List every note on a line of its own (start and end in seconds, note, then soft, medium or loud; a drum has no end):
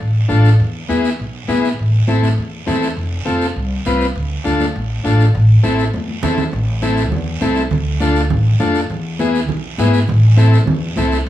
0.00 0.24 A1 medium
0.00 long guiro medium
0.28 0.54 A1 medium
0.28 0.50 D4 medium
0.28 0.50 F4 medium
0.28 0.50 A4 medium
0.28 high conga medium
0.28 short guiro medium
0.45 short guiro medium
0.60 0.83 E2 medium
0.60 long guiro medium
0.88 1.13 E2 medium
0.88 1.10 B3 medium
0.88 1.10 E4 medium
0.88 1.10 G#4 medium
0.88 high conga medium
0.88 short guiro medium
1.05 short guiro medium
1.19 1.43 B1 medium
1.19 long guiro medium
1.48 1.73 B1 medium
1.48 1.69 B3 medium
1.48 1.69 E4 medium
1.48 1.70 G#4 medium
1.48 high conga medium
1.48 short guiro medium
1.65 short guiro medium
1.79 2.02 A1 medium
1.79 long guiro medium
2.08 2.32 A1 medium
2.08 2.29 C4 medium
2.08 2.29 E4 medium
2.08 2.29 A4 medium
2.08 high conga medium
2.08 short guiro medium
2.23 high conga medium
2.23 short guiro medium
2.38 2.62 E2 medium
2.38 long guiro medium
2.66 2.91 E2 medium
2.66 2.88 C4 medium
2.66 2.88 E4 medium
2.66 2.88 A4 medium
2.66 high conga medium
2.66 short guiro medium
2.82 short guiro medium
2.97 3.21 F1 medium
2.97 long guiro medium
3.25 3.50 F1 medium
3.25 3.47 C4 medium
3.25 3.47 F4 medium
3.25 3.47 A4 medium
3.25 high conga medium
3.25 short guiro medium
3.41 short guiro medium
3.56 3.80 C2 medium
3.56 long guiro medium
3.85 4.10 C2 loud
3.85 4.07 C4 medium
3.85 4.07 F4 medium
3.85 4.07 B4 medium
3.85 high conga medium
3.85 short guiro medium
4.01 short guiro medium
4.16 4.40 D2 medium
4.16 long guiro medium
4.44 4.69 D2 medium
4.44 4.66 D4 medium
4.44 4.66 F4 medium
4.44 4.66 A4 medium
4.44 high conga medium
4.44 short guiro medium
4.60 high conga medium
4.60 short guiro medium
4.76 4.99 A1 medium
4.76 long guiro medium
5.04 5.29 A1 loud
5.04 5.25 D4 medium
5.04 5.26 F4 medium
5.04 5.26 A4 medium
5.04 high conga medium
5.04 short guiro medium
5.20 short guiro medium
5.35 5.58 A1 loud
5.35 long guiro medium
5.63 5.88 A1 medium
5.63 5.85 C4 medium
5.63 5.85 E4 medium
5.63 5.85 A4 loud
5.63 high conga medium
5.63 short guiro medium
5.79 short guiro medium
5.94 6.18 E2 medium
5.94 high conga medium
5.94 long guiro medium
6.08 high conga medium
6.23 6.47 E2 loud
6.23 6.44 C4 medium
6.23 6.44 E4 medium
6.23 6.44 A4 medium
6.23 low conga medium
6.23 short guiro medium
6.38 low conga loud
6.38 short guiro medium
6.52 7.12 A1 loud
6.52 high conga soft
6.52 long guiro medium
6.82 7.03 C4 medium
6.82 7.03 E4 medium
6.82 7.04 A4 medium
6.82 high conga medium
6.82 short guiro medium
6.97 short guiro medium
7.12 7.36 E2 loud
7.12 high conga soft
7.12 low conga medium
7.12 long guiro medium
7.41 7.65 C2 medium
7.41 7.62 C4 medium
7.41 7.63 E4 medium
7.41 7.63 A4 loud
7.41 high conga medium
7.41 short guiro medium
7.55 short guiro medium
7.71 8.32 D2 loud
7.71 high conga soft
7.71 low conga medium
7.71 long guiro medium
8.00 8.22 D4 medium
8.00 8.22 F4 medium
8.00 8.22 A4 loud
8.00 high conga medium
8.00 short guiro medium
8.16 short guiro medium
8.30 8.54 A1 loud
8.30 high conga soft
8.30 low conga medium
8.30 long guiro medium
8.60 8.84 F2 medium
8.60 8.81 D4 medium
8.60 8.81 F4 medium
8.60 8.81 A4 medium
8.60 high conga medium
8.60 short guiro medium
8.75 short guiro medium
8.90 9.50 E2 loud
8.90 high conga soft
8.90 long guiro medium
9.19 9.40 B3 medium
9.19 9.40 E4 medium
9.19 9.41 G#4 medium
9.19 high conga medium
9.19 short guiro medium
9.35 short guiro medium
9.49 9.73 B1 loud
9.49 high conga soft
9.49 low conga medium
9.49 long guiro medium
9.78 10.03 G#2 loud
9.78 9.99 B3 medium
9.78 10.00 E4 medium
9.78 10.00 G#4 loud
9.78 high conga medium
9.78 short guiro medium
9.94 short guiro medium
10.08 10.67 A1 loud
10.08 high conga soft
10.08 low conga medium
10.08 long guiro medium
10.37 10.58 C4 medium
10.37 10.58 E4 medium
10.37 10.59 A4 medium
10.37 high conga medium
10.37 short guiro medium
10.53 short guiro medium
10.67 10.91 E2 loud
10.67 high conga soft
10.67 low conga medium
10.67 long guiro medium
10.96 11.21 C2 medium
10.96 11.18 C4 medium
10.96 11.18 E4 medium
10.96 11.18 A4 medium
10.96 high conga medium
10.96 short guiro medium
11.12 short guiro medium